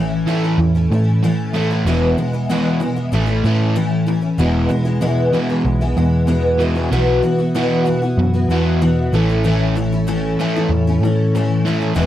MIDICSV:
0, 0, Header, 1, 5, 480
1, 0, Start_track
1, 0, Tempo, 631579
1, 1414, Time_signature, 4, 2, 24, 8
1, 9166, End_track
2, 0, Start_track
2, 0, Title_t, "Tonewheel organ"
2, 0, Program_c, 0, 16
2, 3344, Note_on_c, 0, 68, 64
2, 3346, Note_on_c, 0, 59, 57
2, 3347, Note_on_c, 0, 71, 64
2, 3349, Note_on_c, 0, 64, 64
2, 5244, Note_off_c, 0, 59, 0
2, 5244, Note_off_c, 0, 68, 0
2, 5245, Note_off_c, 0, 71, 0
2, 5246, Note_off_c, 0, 64, 0
2, 5259, Note_on_c, 0, 64, 68
2, 5263, Note_on_c, 0, 59, 60
2, 5263, Note_on_c, 0, 71, 64
2, 5272, Note_on_c, 0, 66, 65
2, 6920, Note_off_c, 0, 64, 0
2, 6922, Note_off_c, 0, 59, 0
2, 6922, Note_off_c, 0, 71, 0
2, 6927, Note_off_c, 0, 66, 0
2, 6939, Note_on_c, 0, 73, 61
2, 6942, Note_on_c, 0, 69, 65
2, 6943, Note_on_c, 0, 64, 61
2, 6945, Note_on_c, 0, 61, 60
2, 9069, Note_off_c, 0, 73, 0
2, 9070, Note_off_c, 0, 69, 0
2, 9071, Note_off_c, 0, 64, 0
2, 9072, Note_off_c, 0, 61, 0
2, 9110, Note_on_c, 0, 64, 58
2, 9111, Note_on_c, 0, 59, 66
2, 9115, Note_on_c, 0, 68, 62
2, 9118, Note_on_c, 0, 71, 64
2, 9166, Note_off_c, 0, 59, 0
2, 9166, Note_off_c, 0, 64, 0
2, 9166, Note_off_c, 0, 68, 0
2, 9166, Note_off_c, 0, 71, 0
2, 9166, End_track
3, 0, Start_track
3, 0, Title_t, "Twelve-string acoustic guitar"
3, 0, Program_c, 1, 25
3, 0, Note_on_c, 1, 45, 78
3, 0, Note_on_c, 1, 52, 89
3, 0, Note_on_c, 1, 57, 81
3, 0, Note_on_c, 1, 61, 82
3, 0, Note_on_c, 1, 64, 84
3, 199, Note_off_c, 1, 52, 0
3, 201, Note_off_c, 1, 57, 0
3, 208, Note_off_c, 1, 45, 0
3, 208, Note_on_c, 1, 52, 73
3, 210, Note_off_c, 1, 61, 0
3, 210, Note_on_c, 1, 57, 67
3, 212, Note_off_c, 1, 64, 0
3, 219, Note_on_c, 1, 61, 66
3, 226, Note_on_c, 1, 64, 69
3, 324, Note_off_c, 1, 64, 0
3, 330, Note_off_c, 1, 52, 0
3, 331, Note_off_c, 1, 57, 0
3, 331, Note_off_c, 1, 61, 0
3, 333, Note_on_c, 1, 64, 52
3, 340, Note_on_c, 1, 61, 46
3, 346, Note_on_c, 1, 57, 46
3, 560, Note_off_c, 1, 64, 0
3, 566, Note_off_c, 1, 61, 0
3, 570, Note_on_c, 1, 64, 52
3, 576, Note_off_c, 1, 57, 0
3, 576, Note_on_c, 1, 61, 48
3, 585, Note_on_c, 1, 57, 45
3, 691, Note_off_c, 1, 64, 0
3, 694, Note_off_c, 1, 61, 0
3, 696, Note_off_c, 1, 57, 0
3, 698, Note_on_c, 1, 52, 52
3, 705, Note_on_c, 1, 57, 49
3, 707, Note_on_c, 1, 61, 52
3, 713, Note_on_c, 1, 64, 57
3, 931, Note_off_c, 1, 52, 0
3, 934, Note_off_c, 1, 57, 0
3, 938, Note_off_c, 1, 61, 0
3, 939, Note_off_c, 1, 64, 0
3, 940, Note_on_c, 1, 45, 67
3, 940, Note_on_c, 1, 52, 64
3, 943, Note_on_c, 1, 57, 80
3, 947, Note_on_c, 1, 61, 76
3, 948, Note_on_c, 1, 64, 80
3, 1158, Note_off_c, 1, 52, 0
3, 1167, Note_off_c, 1, 57, 0
3, 1167, Note_on_c, 1, 52, 58
3, 1170, Note_off_c, 1, 61, 0
3, 1176, Note_on_c, 1, 57, 56
3, 1177, Note_off_c, 1, 45, 0
3, 1177, Note_off_c, 1, 64, 0
3, 1179, Note_on_c, 1, 61, 60
3, 1187, Note_on_c, 1, 64, 64
3, 1286, Note_off_c, 1, 64, 0
3, 1290, Note_off_c, 1, 52, 0
3, 1293, Note_off_c, 1, 61, 0
3, 1295, Note_off_c, 1, 57, 0
3, 1295, Note_on_c, 1, 64, 49
3, 1302, Note_on_c, 1, 61, 40
3, 1310, Note_on_c, 1, 57, 41
3, 1415, Note_off_c, 1, 64, 0
3, 1418, Note_off_c, 1, 61, 0
3, 1418, Note_on_c, 1, 40, 66
3, 1422, Note_off_c, 1, 57, 0
3, 1422, Note_on_c, 1, 47, 72
3, 1425, Note_on_c, 1, 52, 72
3, 1428, Note_on_c, 1, 64, 76
3, 1429, Note_on_c, 1, 56, 79
3, 1429, Note_on_c, 1, 59, 80
3, 1644, Note_off_c, 1, 52, 0
3, 1647, Note_off_c, 1, 56, 0
3, 1651, Note_off_c, 1, 59, 0
3, 1653, Note_on_c, 1, 52, 59
3, 1654, Note_off_c, 1, 64, 0
3, 1656, Note_on_c, 1, 56, 59
3, 1657, Note_off_c, 1, 40, 0
3, 1659, Note_off_c, 1, 47, 0
3, 1660, Note_on_c, 1, 59, 69
3, 1663, Note_on_c, 1, 64, 62
3, 1763, Note_off_c, 1, 64, 0
3, 1767, Note_off_c, 1, 59, 0
3, 1772, Note_on_c, 1, 64, 51
3, 1773, Note_off_c, 1, 56, 0
3, 1774, Note_off_c, 1, 52, 0
3, 1776, Note_on_c, 1, 59, 50
3, 1782, Note_on_c, 1, 56, 46
3, 1786, Note_on_c, 1, 52, 42
3, 1889, Note_off_c, 1, 52, 0
3, 1894, Note_off_c, 1, 64, 0
3, 1896, Note_off_c, 1, 59, 0
3, 1896, Note_on_c, 1, 40, 68
3, 1897, Note_off_c, 1, 56, 0
3, 1898, Note_on_c, 1, 47, 68
3, 1898, Note_on_c, 1, 52, 70
3, 1905, Note_on_c, 1, 59, 82
3, 1906, Note_on_c, 1, 56, 89
3, 1907, Note_on_c, 1, 64, 79
3, 2118, Note_off_c, 1, 52, 0
3, 2125, Note_off_c, 1, 56, 0
3, 2128, Note_on_c, 1, 52, 65
3, 2129, Note_off_c, 1, 59, 0
3, 2134, Note_on_c, 1, 56, 64
3, 2136, Note_off_c, 1, 40, 0
3, 2136, Note_off_c, 1, 64, 0
3, 2137, Note_off_c, 1, 47, 0
3, 2138, Note_on_c, 1, 59, 67
3, 2145, Note_on_c, 1, 64, 65
3, 2244, Note_off_c, 1, 64, 0
3, 2245, Note_off_c, 1, 59, 0
3, 2252, Note_off_c, 1, 52, 0
3, 2253, Note_off_c, 1, 56, 0
3, 2253, Note_on_c, 1, 64, 51
3, 2254, Note_on_c, 1, 59, 47
3, 2262, Note_on_c, 1, 52, 42
3, 2262, Note_on_c, 1, 56, 46
3, 2365, Note_off_c, 1, 52, 0
3, 2369, Note_off_c, 1, 64, 0
3, 2369, Note_on_c, 1, 45, 65
3, 2374, Note_off_c, 1, 56, 0
3, 2374, Note_off_c, 1, 59, 0
3, 2375, Note_on_c, 1, 52, 61
3, 2377, Note_on_c, 1, 57, 66
3, 2377, Note_on_c, 1, 61, 67
3, 2378, Note_on_c, 1, 64, 77
3, 2473, Note_off_c, 1, 64, 0
3, 2482, Note_on_c, 1, 64, 50
3, 2483, Note_off_c, 1, 61, 0
3, 2489, Note_off_c, 1, 57, 0
3, 2492, Note_on_c, 1, 61, 49
3, 2493, Note_off_c, 1, 45, 0
3, 2496, Note_off_c, 1, 52, 0
3, 2498, Note_on_c, 1, 57, 43
3, 2610, Note_off_c, 1, 57, 0
3, 2610, Note_off_c, 1, 64, 0
3, 2615, Note_off_c, 1, 61, 0
3, 2615, Note_on_c, 1, 52, 49
3, 2619, Note_on_c, 1, 57, 48
3, 2626, Note_on_c, 1, 61, 62
3, 2629, Note_on_c, 1, 64, 63
3, 2846, Note_off_c, 1, 52, 0
3, 2849, Note_off_c, 1, 57, 0
3, 2852, Note_off_c, 1, 61, 0
3, 2852, Note_off_c, 1, 64, 0
3, 2853, Note_on_c, 1, 45, 69
3, 2856, Note_on_c, 1, 52, 75
3, 2858, Note_on_c, 1, 57, 71
3, 2861, Note_on_c, 1, 61, 77
3, 2861, Note_on_c, 1, 64, 78
3, 3080, Note_off_c, 1, 52, 0
3, 3087, Note_off_c, 1, 57, 0
3, 3090, Note_off_c, 1, 61, 0
3, 3090, Note_on_c, 1, 52, 62
3, 3094, Note_off_c, 1, 64, 0
3, 3096, Note_off_c, 1, 45, 0
3, 3096, Note_on_c, 1, 57, 55
3, 3099, Note_on_c, 1, 61, 54
3, 3103, Note_on_c, 1, 64, 66
3, 3193, Note_off_c, 1, 64, 0
3, 3201, Note_off_c, 1, 61, 0
3, 3202, Note_on_c, 1, 64, 41
3, 3207, Note_off_c, 1, 57, 0
3, 3210, Note_on_c, 1, 61, 41
3, 3214, Note_off_c, 1, 52, 0
3, 3216, Note_on_c, 1, 57, 32
3, 3329, Note_on_c, 1, 40, 64
3, 3330, Note_off_c, 1, 64, 0
3, 3330, Note_on_c, 1, 47, 73
3, 3334, Note_off_c, 1, 61, 0
3, 3334, Note_on_c, 1, 52, 65
3, 3336, Note_off_c, 1, 57, 0
3, 3338, Note_on_c, 1, 64, 77
3, 3339, Note_on_c, 1, 56, 78
3, 3339, Note_on_c, 1, 59, 78
3, 3553, Note_off_c, 1, 52, 0
3, 3562, Note_off_c, 1, 56, 0
3, 3562, Note_on_c, 1, 52, 57
3, 3566, Note_off_c, 1, 59, 0
3, 3570, Note_off_c, 1, 64, 0
3, 3571, Note_on_c, 1, 56, 52
3, 3574, Note_off_c, 1, 40, 0
3, 3575, Note_off_c, 1, 47, 0
3, 3576, Note_on_c, 1, 59, 62
3, 3580, Note_on_c, 1, 64, 63
3, 3675, Note_off_c, 1, 64, 0
3, 3680, Note_off_c, 1, 59, 0
3, 3684, Note_on_c, 1, 64, 56
3, 3688, Note_off_c, 1, 56, 0
3, 3689, Note_on_c, 1, 59, 54
3, 3690, Note_off_c, 1, 52, 0
3, 3697, Note_on_c, 1, 56, 48
3, 3701, Note_on_c, 1, 52, 45
3, 3804, Note_off_c, 1, 52, 0
3, 3806, Note_off_c, 1, 56, 0
3, 3806, Note_off_c, 1, 64, 0
3, 3807, Note_on_c, 1, 47, 76
3, 3808, Note_off_c, 1, 59, 0
3, 3812, Note_on_c, 1, 40, 70
3, 3813, Note_on_c, 1, 52, 76
3, 3815, Note_on_c, 1, 64, 80
3, 3816, Note_on_c, 1, 56, 83
3, 3817, Note_on_c, 1, 59, 80
3, 4042, Note_off_c, 1, 52, 0
3, 4048, Note_off_c, 1, 56, 0
3, 4050, Note_off_c, 1, 59, 0
3, 4051, Note_on_c, 1, 52, 60
3, 4053, Note_off_c, 1, 47, 0
3, 4055, Note_off_c, 1, 64, 0
3, 4056, Note_off_c, 1, 40, 0
3, 4057, Note_on_c, 1, 56, 65
3, 4059, Note_on_c, 1, 59, 62
3, 4064, Note_on_c, 1, 64, 77
3, 4166, Note_off_c, 1, 64, 0
3, 4170, Note_off_c, 1, 59, 0
3, 4174, Note_off_c, 1, 56, 0
3, 4175, Note_off_c, 1, 52, 0
3, 4175, Note_on_c, 1, 64, 52
3, 4179, Note_on_c, 1, 59, 44
3, 4183, Note_on_c, 1, 56, 45
3, 4192, Note_on_c, 1, 52, 36
3, 4406, Note_off_c, 1, 64, 0
3, 4411, Note_off_c, 1, 59, 0
3, 4415, Note_off_c, 1, 56, 0
3, 4415, Note_on_c, 1, 64, 52
3, 4416, Note_off_c, 1, 52, 0
3, 4420, Note_on_c, 1, 59, 49
3, 4424, Note_on_c, 1, 56, 51
3, 4425, Note_on_c, 1, 52, 39
3, 4525, Note_off_c, 1, 52, 0
3, 4526, Note_off_c, 1, 56, 0
3, 4534, Note_on_c, 1, 52, 47
3, 4535, Note_off_c, 1, 59, 0
3, 4536, Note_on_c, 1, 56, 51
3, 4537, Note_off_c, 1, 64, 0
3, 4544, Note_on_c, 1, 59, 55
3, 4546, Note_on_c, 1, 64, 56
3, 4763, Note_off_c, 1, 52, 0
3, 4764, Note_on_c, 1, 40, 62
3, 4765, Note_off_c, 1, 59, 0
3, 4766, Note_off_c, 1, 56, 0
3, 4766, Note_off_c, 1, 64, 0
3, 4768, Note_on_c, 1, 47, 62
3, 4772, Note_on_c, 1, 52, 71
3, 4774, Note_on_c, 1, 59, 79
3, 4775, Note_on_c, 1, 56, 73
3, 4775, Note_on_c, 1, 64, 69
3, 5005, Note_off_c, 1, 52, 0
3, 5008, Note_off_c, 1, 56, 0
3, 5010, Note_off_c, 1, 59, 0
3, 5012, Note_off_c, 1, 40, 0
3, 5014, Note_off_c, 1, 47, 0
3, 5014, Note_on_c, 1, 52, 53
3, 5017, Note_on_c, 1, 56, 65
3, 5018, Note_off_c, 1, 64, 0
3, 5019, Note_on_c, 1, 59, 68
3, 5027, Note_on_c, 1, 64, 75
3, 5122, Note_off_c, 1, 64, 0
3, 5129, Note_off_c, 1, 59, 0
3, 5132, Note_on_c, 1, 64, 40
3, 5136, Note_off_c, 1, 56, 0
3, 5137, Note_off_c, 1, 52, 0
3, 5138, Note_on_c, 1, 59, 46
3, 5145, Note_on_c, 1, 56, 43
3, 5149, Note_on_c, 1, 52, 34
3, 5254, Note_off_c, 1, 52, 0
3, 5255, Note_off_c, 1, 59, 0
3, 5256, Note_off_c, 1, 64, 0
3, 5261, Note_off_c, 1, 56, 0
3, 5262, Note_on_c, 1, 47, 80
3, 5263, Note_on_c, 1, 52, 76
3, 5264, Note_on_c, 1, 59, 69
3, 5266, Note_on_c, 1, 66, 86
3, 5267, Note_on_c, 1, 64, 72
3, 5482, Note_off_c, 1, 52, 0
3, 5489, Note_off_c, 1, 59, 0
3, 5491, Note_on_c, 1, 52, 58
3, 5495, Note_off_c, 1, 64, 0
3, 5498, Note_off_c, 1, 66, 0
3, 5499, Note_on_c, 1, 59, 63
3, 5501, Note_off_c, 1, 47, 0
3, 5504, Note_on_c, 1, 64, 65
3, 5507, Note_on_c, 1, 66, 66
3, 5603, Note_off_c, 1, 66, 0
3, 5611, Note_off_c, 1, 64, 0
3, 5612, Note_on_c, 1, 66, 56
3, 5615, Note_off_c, 1, 52, 0
3, 5616, Note_off_c, 1, 59, 0
3, 5620, Note_on_c, 1, 64, 47
3, 5625, Note_on_c, 1, 59, 45
3, 5732, Note_off_c, 1, 59, 0
3, 5734, Note_off_c, 1, 64, 0
3, 5734, Note_on_c, 1, 47, 75
3, 5736, Note_off_c, 1, 66, 0
3, 5740, Note_on_c, 1, 52, 72
3, 5741, Note_on_c, 1, 59, 75
3, 5743, Note_on_c, 1, 64, 84
3, 5744, Note_on_c, 1, 66, 89
3, 5954, Note_off_c, 1, 52, 0
3, 5962, Note_off_c, 1, 59, 0
3, 5964, Note_on_c, 1, 52, 56
3, 5970, Note_off_c, 1, 64, 0
3, 5971, Note_on_c, 1, 59, 67
3, 5972, Note_off_c, 1, 66, 0
3, 5977, Note_off_c, 1, 47, 0
3, 5979, Note_on_c, 1, 64, 69
3, 5982, Note_on_c, 1, 66, 81
3, 6085, Note_off_c, 1, 66, 0
3, 6091, Note_off_c, 1, 52, 0
3, 6094, Note_on_c, 1, 66, 52
3, 6095, Note_off_c, 1, 59, 0
3, 6095, Note_off_c, 1, 64, 0
3, 6104, Note_on_c, 1, 64, 46
3, 6112, Note_on_c, 1, 59, 49
3, 6325, Note_off_c, 1, 66, 0
3, 6332, Note_off_c, 1, 64, 0
3, 6335, Note_on_c, 1, 66, 48
3, 6340, Note_off_c, 1, 59, 0
3, 6341, Note_on_c, 1, 64, 48
3, 6350, Note_on_c, 1, 59, 42
3, 6451, Note_off_c, 1, 59, 0
3, 6455, Note_on_c, 1, 52, 48
3, 6456, Note_off_c, 1, 64, 0
3, 6457, Note_off_c, 1, 66, 0
3, 6460, Note_on_c, 1, 59, 53
3, 6465, Note_on_c, 1, 64, 66
3, 6466, Note_on_c, 1, 66, 64
3, 6692, Note_off_c, 1, 52, 0
3, 6693, Note_off_c, 1, 59, 0
3, 6695, Note_off_c, 1, 66, 0
3, 6696, Note_off_c, 1, 64, 0
3, 6699, Note_on_c, 1, 47, 64
3, 6701, Note_on_c, 1, 52, 77
3, 6702, Note_on_c, 1, 59, 81
3, 6705, Note_on_c, 1, 64, 71
3, 6705, Note_on_c, 1, 66, 68
3, 6926, Note_off_c, 1, 52, 0
3, 6935, Note_on_c, 1, 52, 55
3, 6938, Note_off_c, 1, 47, 0
3, 6939, Note_off_c, 1, 59, 0
3, 6941, Note_off_c, 1, 64, 0
3, 6941, Note_off_c, 1, 66, 0
3, 6942, Note_on_c, 1, 57, 68
3, 6945, Note_on_c, 1, 61, 69
3, 6953, Note_on_c, 1, 64, 59
3, 7053, Note_off_c, 1, 64, 0
3, 7056, Note_off_c, 1, 52, 0
3, 7059, Note_off_c, 1, 61, 0
3, 7060, Note_off_c, 1, 57, 0
3, 7062, Note_on_c, 1, 64, 50
3, 7068, Note_on_c, 1, 61, 43
3, 7076, Note_on_c, 1, 57, 41
3, 7170, Note_off_c, 1, 57, 0
3, 7175, Note_on_c, 1, 45, 72
3, 7177, Note_off_c, 1, 61, 0
3, 7178, Note_off_c, 1, 64, 0
3, 7178, Note_on_c, 1, 52, 77
3, 7179, Note_on_c, 1, 57, 74
3, 7186, Note_on_c, 1, 61, 73
3, 7187, Note_on_c, 1, 64, 80
3, 7404, Note_off_c, 1, 52, 0
3, 7411, Note_off_c, 1, 57, 0
3, 7412, Note_off_c, 1, 61, 0
3, 7413, Note_on_c, 1, 52, 59
3, 7415, Note_off_c, 1, 45, 0
3, 7420, Note_on_c, 1, 57, 59
3, 7421, Note_off_c, 1, 64, 0
3, 7422, Note_on_c, 1, 61, 66
3, 7432, Note_on_c, 1, 64, 73
3, 7533, Note_off_c, 1, 64, 0
3, 7534, Note_off_c, 1, 52, 0
3, 7538, Note_off_c, 1, 57, 0
3, 7539, Note_off_c, 1, 61, 0
3, 7542, Note_on_c, 1, 64, 56
3, 7550, Note_on_c, 1, 61, 50
3, 7556, Note_on_c, 1, 57, 42
3, 7648, Note_off_c, 1, 57, 0
3, 7651, Note_on_c, 1, 45, 63
3, 7653, Note_off_c, 1, 61, 0
3, 7657, Note_on_c, 1, 57, 88
3, 7658, Note_on_c, 1, 52, 78
3, 7659, Note_off_c, 1, 64, 0
3, 7662, Note_on_c, 1, 61, 84
3, 7666, Note_on_c, 1, 64, 84
3, 7891, Note_off_c, 1, 52, 0
3, 7892, Note_off_c, 1, 45, 0
3, 7895, Note_off_c, 1, 57, 0
3, 7898, Note_off_c, 1, 61, 0
3, 7900, Note_off_c, 1, 64, 0
3, 7900, Note_on_c, 1, 52, 62
3, 7904, Note_on_c, 1, 57, 66
3, 7908, Note_on_c, 1, 61, 67
3, 7910, Note_on_c, 1, 64, 79
3, 8017, Note_off_c, 1, 52, 0
3, 8018, Note_off_c, 1, 64, 0
3, 8019, Note_off_c, 1, 57, 0
3, 8021, Note_off_c, 1, 61, 0
3, 8027, Note_on_c, 1, 64, 52
3, 8029, Note_on_c, 1, 61, 48
3, 8037, Note_on_c, 1, 57, 44
3, 8254, Note_off_c, 1, 64, 0
3, 8261, Note_off_c, 1, 61, 0
3, 8263, Note_on_c, 1, 64, 57
3, 8265, Note_off_c, 1, 57, 0
3, 8273, Note_on_c, 1, 61, 44
3, 8279, Note_on_c, 1, 57, 46
3, 8378, Note_off_c, 1, 64, 0
3, 8383, Note_off_c, 1, 61, 0
3, 8386, Note_off_c, 1, 57, 0
3, 8389, Note_on_c, 1, 52, 52
3, 8396, Note_on_c, 1, 57, 67
3, 8399, Note_on_c, 1, 61, 62
3, 8403, Note_on_c, 1, 64, 59
3, 8620, Note_off_c, 1, 52, 0
3, 8623, Note_off_c, 1, 57, 0
3, 8624, Note_on_c, 1, 45, 65
3, 8625, Note_off_c, 1, 61, 0
3, 8627, Note_off_c, 1, 64, 0
3, 8629, Note_on_c, 1, 52, 79
3, 8634, Note_on_c, 1, 64, 65
3, 8636, Note_on_c, 1, 57, 73
3, 8638, Note_on_c, 1, 61, 73
3, 8853, Note_off_c, 1, 52, 0
3, 8855, Note_off_c, 1, 57, 0
3, 8857, Note_off_c, 1, 45, 0
3, 8862, Note_off_c, 1, 61, 0
3, 8862, Note_off_c, 1, 64, 0
3, 8862, Note_on_c, 1, 52, 60
3, 8864, Note_on_c, 1, 57, 59
3, 8871, Note_on_c, 1, 61, 66
3, 8874, Note_on_c, 1, 64, 70
3, 8964, Note_off_c, 1, 64, 0
3, 8973, Note_off_c, 1, 57, 0
3, 8973, Note_off_c, 1, 61, 0
3, 8973, Note_on_c, 1, 64, 47
3, 8976, Note_off_c, 1, 52, 0
3, 8982, Note_on_c, 1, 57, 39
3, 8982, Note_on_c, 1, 61, 45
3, 9079, Note_off_c, 1, 64, 0
3, 9080, Note_on_c, 1, 40, 65
3, 9085, Note_off_c, 1, 57, 0
3, 9086, Note_on_c, 1, 47, 70
3, 9087, Note_off_c, 1, 61, 0
3, 9088, Note_on_c, 1, 52, 75
3, 9088, Note_on_c, 1, 56, 81
3, 9088, Note_on_c, 1, 64, 87
3, 9090, Note_on_c, 1, 59, 84
3, 9166, Note_off_c, 1, 40, 0
3, 9166, Note_off_c, 1, 47, 0
3, 9166, Note_off_c, 1, 52, 0
3, 9166, Note_off_c, 1, 56, 0
3, 9166, Note_off_c, 1, 59, 0
3, 9166, Note_off_c, 1, 64, 0
3, 9166, End_track
4, 0, Start_track
4, 0, Title_t, "Overdriven electric guitar"
4, 0, Program_c, 2, 29
4, 202, Note_on_c, 2, 45, 75
4, 433, Note_off_c, 2, 45, 0
4, 449, Note_on_c, 2, 45, 63
4, 453, Note_on_c, 2, 52, 69
4, 667, Note_off_c, 2, 45, 0
4, 669, Note_off_c, 2, 52, 0
4, 697, Note_on_c, 2, 45, 60
4, 911, Note_off_c, 2, 45, 0
4, 1170, Note_on_c, 2, 45, 64
4, 1398, Note_off_c, 2, 45, 0
4, 1664, Note_on_c, 2, 47, 67
4, 1665, Note_on_c, 2, 40, 57
4, 1876, Note_off_c, 2, 40, 0
4, 1876, Note_off_c, 2, 47, 0
4, 2149, Note_on_c, 2, 40, 63
4, 2150, Note_on_c, 2, 47, 62
4, 2359, Note_off_c, 2, 40, 0
4, 2359, Note_off_c, 2, 47, 0
4, 2622, Note_on_c, 2, 45, 76
4, 2846, Note_off_c, 2, 45, 0
4, 3106, Note_on_c, 2, 45, 54
4, 3318, Note_off_c, 2, 45, 0
4, 3570, Note_on_c, 2, 40, 51
4, 3573, Note_on_c, 2, 47, 64
4, 3791, Note_off_c, 2, 40, 0
4, 3792, Note_off_c, 2, 47, 0
4, 4049, Note_on_c, 2, 40, 86
4, 4054, Note_on_c, 2, 47, 78
4, 4280, Note_off_c, 2, 40, 0
4, 4282, Note_off_c, 2, 47, 0
4, 4290, Note_on_c, 2, 40, 65
4, 4293, Note_on_c, 2, 47, 78
4, 4511, Note_off_c, 2, 40, 0
4, 4513, Note_off_c, 2, 47, 0
4, 4537, Note_on_c, 2, 40, 63
4, 4543, Note_on_c, 2, 47, 67
4, 4754, Note_off_c, 2, 40, 0
4, 4757, Note_off_c, 2, 47, 0
4, 5003, Note_on_c, 2, 40, 73
4, 5010, Note_on_c, 2, 47, 75
4, 5237, Note_off_c, 2, 40, 0
4, 5241, Note_off_c, 2, 47, 0
4, 5499, Note_on_c, 2, 47, 54
4, 5715, Note_off_c, 2, 47, 0
4, 5987, Note_on_c, 2, 47, 60
4, 6199, Note_off_c, 2, 47, 0
4, 6224, Note_on_c, 2, 52, 67
4, 6228, Note_on_c, 2, 47, 71
4, 6437, Note_off_c, 2, 52, 0
4, 6439, Note_off_c, 2, 47, 0
4, 6467, Note_on_c, 2, 47, 73
4, 6688, Note_off_c, 2, 47, 0
4, 6953, Note_on_c, 2, 45, 68
4, 7170, Note_off_c, 2, 45, 0
4, 7430, Note_on_c, 2, 45, 56
4, 7638, Note_off_c, 2, 45, 0
4, 7898, Note_on_c, 2, 45, 73
4, 8121, Note_off_c, 2, 45, 0
4, 8145, Note_on_c, 2, 45, 65
4, 8146, Note_on_c, 2, 52, 65
4, 8355, Note_off_c, 2, 45, 0
4, 8355, Note_off_c, 2, 52, 0
4, 8383, Note_on_c, 2, 45, 55
4, 8593, Note_off_c, 2, 45, 0
4, 8854, Note_on_c, 2, 45, 78
4, 9077, Note_off_c, 2, 45, 0
4, 9166, End_track
5, 0, Start_track
5, 0, Title_t, "Picked electric bass"
5, 0, Program_c, 3, 34
5, 0, Note_on_c, 3, 33, 81
5, 176, Note_off_c, 3, 33, 0
5, 441, Note_on_c, 3, 40, 89
5, 663, Note_off_c, 3, 40, 0
5, 685, Note_on_c, 3, 45, 92
5, 1380, Note_off_c, 3, 45, 0
5, 1406, Note_on_c, 3, 28, 97
5, 1627, Note_off_c, 3, 28, 0
5, 2375, Note_on_c, 3, 33, 81
5, 2592, Note_off_c, 3, 33, 0
5, 2613, Note_on_c, 3, 45, 85
5, 3306, Note_off_c, 3, 45, 0
5, 3330, Note_on_c, 3, 28, 81
5, 3551, Note_off_c, 3, 28, 0
5, 4294, Note_on_c, 3, 35, 99
5, 4513, Note_off_c, 3, 35, 0
5, 4535, Note_on_c, 3, 40, 91
5, 5227, Note_off_c, 3, 40, 0
5, 5256, Note_on_c, 3, 35, 86
5, 5474, Note_off_c, 3, 35, 0
5, 6212, Note_on_c, 3, 42, 95
5, 6431, Note_off_c, 3, 42, 0
5, 6447, Note_on_c, 3, 40, 91
5, 6901, Note_off_c, 3, 40, 0
5, 6930, Note_on_c, 3, 33, 94
5, 7860, Note_off_c, 3, 33, 0
5, 8126, Note_on_c, 3, 40, 94
5, 8345, Note_off_c, 3, 40, 0
5, 8365, Note_on_c, 3, 45, 85
5, 9055, Note_off_c, 3, 45, 0
5, 9089, Note_on_c, 3, 28, 83
5, 9166, Note_off_c, 3, 28, 0
5, 9166, End_track
0, 0, End_of_file